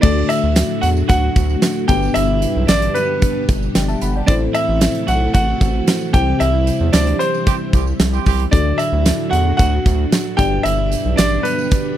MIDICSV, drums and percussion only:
0, 0, Header, 1, 2, 480
1, 0, Start_track
1, 0, Tempo, 530973
1, 30, Time_signature, 4, 2, 24, 8
1, 10825, End_track
2, 0, Start_track
2, 0, Title_t, "Drums"
2, 28, Note_on_c, 9, 49, 99
2, 29, Note_on_c, 9, 36, 118
2, 34, Note_on_c, 9, 54, 54
2, 118, Note_off_c, 9, 49, 0
2, 120, Note_off_c, 9, 36, 0
2, 124, Note_off_c, 9, 54, 0
2, 268, Note_on_c, 9, 54, 58
2, 272, Note_on_c, 9, 42, 72
2, 358, Note_off_c, 9, 54, 0
2, 362, Note_off_c, 9, 42, 0
2, 504, Note_on_c, 9, 42, 101
2, 508, Note_on_c, 9, 38, 109
2, 508, Note_on_c, 9, 54, 68
2, 511, Note_off_c, 9, 54, 0
2, 511, Note_on_c, 9, 54, 90
2, 595, Note_off_c, 9, 42, 0
2, 599, Note_off_c, 9, 38, 0
2, 601, Note_off_c, 9, 54, 0
2, 750, Note_on_c, 9, 42, 73
2, 750, Note_on_c, 9, 54, 48
2, 840, Note_off_c, 9, 42, 0
2, 840, Note_off_c, 9, 54, 0
2, 873, Note_on_c, 9, 54, 34
2, 964, Note_off_c, 9, 54, 0
2, 986, Note_on_c, 9, 42, 74
2, 987, Note_on_c, 9, 54, 53
2, 990, Note_on_c, 9, 36, 92
2, 1077, Note_off_c, 9, 42, 0
2, 1077, Note_off_c, 9, 54, 0
2, 1081, Note_off_c, 9, 36, 0
2, 1229, Note_on_c, 9, 54, 48
2, 1230, Note_on_c, 9, 36, 97
2, 1230, Note_on_c, 9, 42, 71
2, 1320, Note_off_c, 9, 36, 0
2, 1320, Note_off_c, 9, 42, 0
2, 1320, Note_off_c, 9, 54, 0
2, 1352, Note_on_c, 9, 54, 30
2, 1443, Note_off_c, 9, 54, 0
2, 1466, Note_on_c, 9, 38, 104
2, 1466, Note_on_c, 9, 42, 83
2, 1466, Note_on_c, 9, 54, 68
2, 1471, Note_off_c, 9, 54, 0
2, 1471, Note_on_c, 9, 54, 89
2, 1556, Note_off_c, 9, 42, 0
2, 1557, Note_off_c, 9, 38, 0
2, 1561, Note_off_c, 9, 54, 0
2, 1705, Note_on_c, 9, 42, 78
2, 1709, Note_on_c, 9, 36, 103
2, 1713, Note_on_c, 9, 54, 50
2, 1796, Note_off_c, 9, 42, 0
2, 1800, Note_off_c, 9, 36, 0
2, 1803, Note_off_c, 9, 54, 0
2, 1828, Note_on_c, 9, 54, 31
2, 1919, Note_off_c, 9, 54, 0
2, 1949, Note_on_c, 9, 42, 94
2, 1952, Note_on_c, 9, 54, 52
2, 2039, Note_off_c, 9, 42, 0
2, 2042, Note_off_c, 9, 54, 0
2, 2187, Note_on_c, 9, 54, 58
2, 2190, Note_on_c, 9, 42, 67
2, 2277, Note_off_c, 9, 54, 0
2, 2281, Note_off_c, 9, 42, 0
2, 2426, Note_on_c, 9, 42, 103
2, 2430, Note_on_c, 9, 38, 114
2, 2430, Note_on_c, 9, 54, 71
2, 2434, Note_off_c, 9, 54, 0
2, 2434, Note_on_c, 9, 54, 92
2, 2517, Note_off_c, 9, 42, 0
2, 2521, Note_off_c, 9, 38, 0
2, 2524, Note_off_c, 9, 54, 0
2, 2549, Note_on_c, 9, 42, 61
2, 2639, Note_off_c, 9, 42, 0
2, 2671, Note_on_c, 9, 42, 74
2, 2671, Note_on_c, 9, 54, 48
2, 2761, Note_off_c, 9, 42, 0
2, 2761, Note_off_c, 9, 54, 0
2, 2909, Note_on_c, 9, 54, 52
2, 2911, Note_on_c, 9, 42, 78
2, 2913, Note_on_c, 9, 36, 93
2, 3000, Note_off_c, 9, 54, 0
2, 3001, Note_off_c, 9, 42, 0
2, 3004, Note_off_c, 9, 36, 0
2, 3152, Note_on_c, 9, 42, 69
2, 3152, Note_on_c, 9, 54, 47
2, 3153, Note_on_c, 9, 36, 98
2, 3242, Note_off_c, 9, 54, 0
2, 3243, Note_off_c, 9, 36, 0
2, 3243, Note_off_c, 9, 42, 0
2, 3276, Note_on_c, 9, 54, 31
2, 3366, Note_off_c, 9, 54, 0
2, 3391, Note_on_c, 9, 38, 103
2, 3391, Note_on_c, 9, 42, 84
2, 3391, Note_on_c, 9, 54, 67
2, 3394, Note_off_c, 9, 54, 0
2, 3394, Note_on_c, 9, 54, 91
2, 3481, Note_off_c, 9, 42, 0
2, 3482, Note_off_c, 9, 38, 0
2, 3484, Note_off_c, 9, 54, 0
2, 3513, Note_on_c, 9, 54, 32
2, 3603, Note_off_c, 9, 54, 0
2, 3630, Note_on_c, 9, 42, 83
2, 3636, Note_on_c, 9, 54, 51
2, 3720, Note_off_c, 9, 42, 0
2, 3727, Note_off_c, 9, 54, 0
2, 3870, Note_on_c, 9, 42, 93
2, 3871, Note_on_c, 9, 36, 121
2, 3875, Note_on_c, 9, 54, 52
2, 3960, Note_off_c, 9, 42, 0
2, 3962, Note_off_c, 9, 36, 0
2, 3965, Note_off_c, 9, 54, 0
2, 4109, Note_on_c, 9, 54, 59
2, 4113, Note_on_c, 9, 42, 73
2, 4199, Note_off_c, 9, 54, 0
2, 4203, Note_off_c, 9, 42, 0
2, 4349, Note_on_c, 9, 42, 107
2, 4353, Note_on_c, 9, 38, 109
2, 4353, Note_on_c, 9, 54, 74
2, 4354, Note_off_c, 9, 54, 0
2, 4354, Note_on_c, 9, 54, 93
2, 4439, Note_off_c, 9, 42, 0
2, 4444, Note_off_c, 9, 38, 0
2, 4444, Note_off_c, 9, 54, 0
2, 4472, Note_on_c, 9, 42, 59
2, 4562, Note_off_c, 9, 42, 0
2, 4590, Note_on_c, 9, 54, 51
2, 4593, Note_on_c, 9, 42, 76
2, 4681, Note_off_c, 9, 54, 0
2, 4684, Note_off_c, 9, 42, 0
2, 4830, Note_on_c, 9, 54, 56
2, 4832, Note_on_c, 9, 42, 74
2, 4833, Note_on_c, 9, 36, 96
2, 4921, Note_off_c, 9, 54, 0
2, 4923, Note_off_c, 9, 42, 0
2, 4924, Note_off_c, 9, 36, 0
2, 5070, Note_on_c, 9, 54, 49
2, 5072, Note_on_c, 9, 36, 103
2, 5073, Note_on_c, 9, 42, 73
2, 5161, Note_off_c, 9, 54, 0
2, 5162, Note_off_c, 9, 36, 0
2, 5163, Note_off_c, 9, 42, 0
2, 5311, Note_on_c, 9, 54, 91
2, 5313, Note_off_c, 9, 54, 0
2, 5313, Note_on_c, 9, 38, 113
2, 5313, Note_on_c, 9, 42, 92
2, 5313, Note_on_c, 9, 54, 66
2, 5403, Note_off_c, 9, 38, 0
2, 5403, Note_off_c, 9, 42, 0
2, 5403, Note_off_c, 9, 54, 0
2, 5431, Note_on_c, 9, 54, 31
2, 5522, Note_off_c, 9, 54, 0
2, 5550, Note_on_c, 9, 42, 77
2, 5551, Note_on_c, 9, 36, 104
2, 5555, Note_on_c, 9, 54, 51
2, 5641, Note_off_c, 9, 36, 0
2, 5641, Note_off_c, 9, 42, 0
2, 5645, Note_off_c, 9, 54, 0
2, 5791, Note_on_c, 9, 42, 92
2, 5792, Note_on_c, 9, 54, 53
2, 5882, Note_off_c, 9, 42, 0
2, 5882, Note_off_c, 9, 54, 0
2, 6030, Note_on_c, 9, 54, 56
2, 6032, Note_on_c, 9, 42, 72
2, 6120, Note_off_c, 9, 54, 0
2, 6122, Note_off_c, 9, 42, 0
2, 6267, Note_on_c, 9, 42, 104
2, 6270, Note_on_c, 9, 54, 75
2, 6271, Note_on_c, 9, 38, 108
2, 6274, Note_off_c, 9, 54, 0
2, 6274, Note_on_c, 9, 54, 90
2, 6357, Note_off_c, 9, 42, 0
2, 6361, Note_off_c, 9, 38, 0
2, 6365, Note_off_c, 9, 54, 0
2, 6391, Note_on_c, 9, 42, 61
2, 6482, Note_off_c, 9, 42, 0
2, 6511, Note_on_c, 9, 54, 50
2, 6515, Note_on_c, 9, 42, 75
2, 6602, Note_off_c, 9, 54, 0
2, 6605, Note_off_c, 9, 42, 0
2, 6637, Note_on_c, 9, 54, 35
2, 6728, Note_off_c, 9, 54, 0
2, 6750, Note_on_c, 9, 42, 71
2, 6750, Note_on_c, 9, 54, 54
2, 6752, Note_on_c, 9, 36, 90
2, 6840, Note_off_c, 9, 42, 0
2, 6840, Note_off_c, 9, 54, 0
2, 6842, Note_off_c, 9, 36, 0
2, 6991, Note_on_c, 9, 36, 96
2, 6992, Note_on_c, 9, 42, 71
2, 6994, Note_on_c, 9, 54, 46
2, 7081, Note_off_c, 9, 36, 0
2, 7082, Note_off_c, 9, 42, 0
2, 7084, Note_off_c, 9, 54, 0
2, 7116, Note_on_c, 9, 54, 32
2, 7207, Note_off_c, 9, 54, 0
2, 7229, Note_on_c, 9, 38, 110
2, 7229, Note_on_c, 9, 42, 90
2, 7229, Note_on_c, 9, 54, 72
2, 7237, Note_off_c, 9, 54, 0
2, 7237, Note_on_c, 9, 54, 93
2, 7319, Note_off_c, 9, 42, 0
2, 7320, Note_off_c, 9, 38, 0
2, 7328, Note_off_c, 9, 54, 0
2, 7354, Note_on_c, 9, 54, 30
2, 7445, Note_off_c, 9, 54, 0
2, 7467, Note_on_c, 9, 46, 80
2, 7471, Note_on_c, 9, 36, 87
2, 7476, Note_on_c, 9, 54, 50
2, 7557, Note_off_c, 9, 46, 0
2, 7562, Note_off_c, 9, 36, 0
2, 7566, Note_off_c, 9, 54, 0
2, 7591, Note_on_c, 9, 42, 52
2, 7681, Note_off_c, 9, 42, 0
2, 7709, Note_on_c, 9, 36, 124
2, 7709, Note_on_c, 9, 42, 94
2, 7715, Note_on_c, 9, 54, 51
2, 7800, Note_off_c, 9, 36, 0
2, 7800, Note_off_c, 9, 42, 0
2, 7805, Note_off_c, 9, 54, 0
2, 7947, Note_on_c, 9, 54, 58
2, 7951, Note_on_c, 9, 42, 72
2, 8037, Note_off_c, 9, 54, 0
2, 8042, Note_off_c, 9, 42, 0
2, 8187, Note_on_c, 9, 42, 103
2, 8191, Note_on_c, 9, 38, 117
2, 8191, Note_on_c, 9, 54, 77
2, 8193, Note_off_c, 9, 54, 0
2, 8193, Note_on_c, 9, 54, 95
2, 8277, Note_off_c, 9, 42, 0
2, 8281, Note_off_c, 9, 38, 0
2, 8283, Note_off_c, 9, 54, 0
2, 8431, Note_on_c, 9, 54, 49
2, 8434, Note_on_c, 9, 42, 77
2, 8521, Note_off_c, 9, 54, 0
2, 8524, Note_off_c, 9, 42, 0
2, 8671, Note_on_c, 9, 42, 77
2, 8671, Note_on_c, 9, 54, 54
2, 8673, Note_on_c, 9, 36, 95
2, 8761, Note_off_c, 9, 54, 0
2, 8762, Note_off_c, 9, 42, 0
2, 8763, Note_off_c, 9, 36, 0
2, 8911, Note_on_c, 9, 54, 48
2, 8912, Note_on_c, 9, 36, 98
2, 8914, Note_on_c, 9, 42, 71
2, 9001, Note_off_c, 9, 54, 0
2, 9003, Note_off_c, 9, 36, 0
2, 9004, Note_off_c, 9, 42, 0
2, 9152, Note_on_c, 9, 42, 89
2, 9152, Note_on_c, 9, 54, 64
2, 9153, Note_off_c, 9, 54, 0
2, 9153, Note_on_c, 9, 38, 110
2, 9153, Note_on_c, 9, 54, 88
2, 9243, Note_off_c, 9, 38, 0
2, 9243, Note_off_c, 9, 42, 0
2, 9244, Note_off_c, 9, 54, 0
2, 9390, Note_on_c, 9, 36, 104
2, 9390, Note_on_c, 9, 42, 80
2, 9395, Note_on_c, 9, 54, 49
2, 9480, Note_off_c, 9, 42, 0
2, 9481, Note_off_c, 9, 36, 0
2, 9485, Note_off_c, 9, 54, 0
2, 9632, Note_on_c, 9, 42, 96
2, 9634, Note_on_c, 9, 54, 54
2, 9722, Note_off_c, 9, 42, 0
2, 9725, Note_off_c, 9, 54, 0
2, 9868, Note_on_c, 9, 54, 57
2, 9876, Note_on_c, 9, 42, 69
2, 9958, Note_off_c, 9, 54, 0
2, 9967, Note_off_c, 9, 42, 0
2, 10110, Note_on_c, 9, 42, 102
2, 10111, Note_on_c, 9, 54, 91
2, 10113, Note_off_c, 9, 54, 0
2, 10113, Note_on_c, 9, 54, 73
2, 10114, Note_on_c, 9, 38, 120
2, 10200, Note_off_c, 9, 42, 0
2, 10204, Note_off_c, 9, 38, 0
2, 10204, Note_off_c, 9, 54, 0
2, 10349, Note_on_c, 9, 54, 48
2, 10352, Note_on_c, 9, 42, 77
2, 10440, Note_off_c, 9, 54, 0
2, 10442, Note_off_c, 9, 42, 0
2, 10472, Note_on_c, 9, 54, 34
2, 10562, Note_off_c, 9, 54, 0
2, 10587, Note_on_c, 9, 54, 54
2, 10590, Note_on_c, 9, 42, 73
2, 10592, Note_on_c, 9, 36, 95
2, 10677, Note_off_c, 9, 54, 0
2, 10680, Note_off_c, 9, 42, 0
2, 10683, Note_off_c, 9, 36, 0
2, 10825, End_track
0, 0, End_of_file